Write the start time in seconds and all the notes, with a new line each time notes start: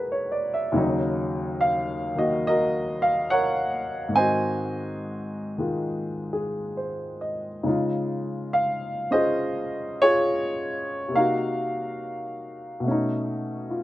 Already playing: E2 B2 G#3 B3 D4 F#4 G#4 A#4 B4
0.12 C#5
0.32 D5
0.54 E5
0.72 D#2 C#3 F#3
0.77 D#4
1.61 F5
2.15 D#3 A#3 F#4 D#5
2.47 F#4 A#4 D#5
3.02 F5
3.30 A#4 C#5 F#5
4.08 G#2 D#3
4.16 C4 F#4 C5 D#5 G#5
5.58 D#3 G#3 F4
6.33 G#4
6.77 C5
7.21 D#5
7.63 C#3 G#3 D#4
7.68 F4
8.53 F5
9.11 C#4 F4 G#4 C5 D#5
10.02 F4 G#4 C#5
11.08 C3 A#3
11.15 D#4 F#4 A#4 F5
12.80 B2
12.84 A3 C#4
12.91 D#4
13.70 F4